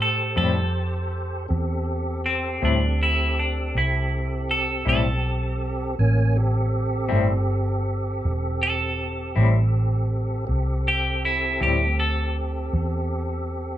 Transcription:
Already playing: fingered electric bass A2, tonewheel organ G4 A4 C5
0.02 clean electric guitar A4
0.36 fingered electric bass F2, clean electric guitar A2 G3 C4 E4 A4
1.48 fingered electric bass E2, tonewheel organ C4 G4 A4
2.26 clean electric guitar C4
2.62 fingered electric bass D2, clean electric guitar A2 G3 C4 D4 E4
3.03 clean electric guitar E4
3.39 clean electric guitar D4
3.75 fingered electric bass C2, clean electric guitar E4
4.51 clean electric guitar A4
4.85 fingered electric bass B1, clean electric guitar A2 G3 C4 E4 A4
5.99 fingered electric bass A1, tonewheel organ A#3 C#4 G#5
6.36 tonewheel organ C4 G4 A4
7.09 fingered electric bass G1, clean electric guitar A2 G3 C4 E4
8.25 fingered electric bass E1
8.63 clean electric guitar A4
9.36 fingered electric bass A1, clean electric guitar A2 G3 C4 E4
10.47 fingered electric bass C2, tonewheel organ C4 G4 A4
10.88 clean electric guitar G4
11.25 clean electric guitar E4
11.60 fingered electric bass D2, clean electric guitar A2 G3 C4 E4 G4
12.00 clean electric guitar A4
12.73 fingered electric bass E2

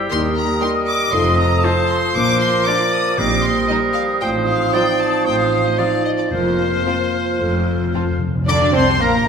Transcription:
Already playing: oboe G4
0.09 double bass section D#2, cello section D#2, french horn section G3 D#4, bassoon G3, clarinet A#4, violin section C6, flute section D#6
0.35 violin section A#5
0.59 viola section G3 D#4, violin section G4 A#4 C6, oboe D#5
0.87 violin section D6
1.11 double bass section F1, timpani F2, cello section F2, bassoon F3, french horn section A3 D#4, clarinet A4, violin section C6
1.39 violin section A#5
1.63 viola section C4 D#4, violin section F4 A4 A5, oboe C5
1.89 violin section C6
2.15 double bass section A#1, cello section A#2, timpani A#2, french horn section A#3 D4, clarinet A#4, violin section D6, flute section D6
2.40 violin section C6
2.65 viola section A#3 D4, violin section F4 A#4 D6, oboe D5
2.92 violin section D#6
3.16 double bass section A#1, cello section A#2, timpani A#2, bassoon G3, french horn section C4 D#4, oboe A#4, clarinet C5, violin section D6, flute section D#6
3.43 violin section C6
3.68 viola section G3 D#4, violin section D#4 C5 D#5
3.94 violin section F5
4.21 double bass section A1, cello section A2, bassoon F3, french horn section C4 D#4, oboe C5, violin section G5
4.46 violin section F5
4.73 viola section F3 D#4, violin section F4 C5 G5, oboe D5
4.99 violin section A5
5.25 double bass section A1, cello section A2, oboe C5, violin section G5
5.38 violin section F5
5.65 violin section D#5
5.77 viola section F3 D#4, french horn section C4 D#4, violin section F4 C5 F5, oboe D5
6.04 violin section D#5
6.18 violin section D5
6.30 double bass section F1, timpani F2, cello section F2, french horn section A#3 F4, clarinet A#4, violin section C5, oboe C5, flute section F6
6.86 viola section F3 C4, violin section F4 A#4
7.40 double bass section F1, cello section F2, timpani F2, french horn section A3 F4, clarinet A4
7.48 timpani F2
7.56 timpani F2
7.64 timpani F2
7.72 timpani F2
7.79 timpani F2
7.87 timpani F2
7.94 timpani F2, viola section F3 C4, violin section F4 A4
8.03 timpani F2
8.10 timpani F2
8.18 timpani F2
8.27 timpani F2
8.35 timpani F2
8.42 timpani F2
8.47 double bass section D2, cello section D3, bassoon D4, viola section D4, french horn section D4, violin section D5 D6, trumpet D5, clarinet D5, flute section A#5, oboe D6
8.72 double bass section C2, cello section C3, bassoon C4, viola section C4, french horn section C4, violin section C5 C6, trumpet C5, clarinet C5, flute section A5, oboe C6
9.00 double bass section A#1, cello section A#2, bassoon A#3, viola section A#3, french horn section A#3, violin section A#4 A#5, trumpet A#4, clarinet A#4, flute section F5, oboe A#5

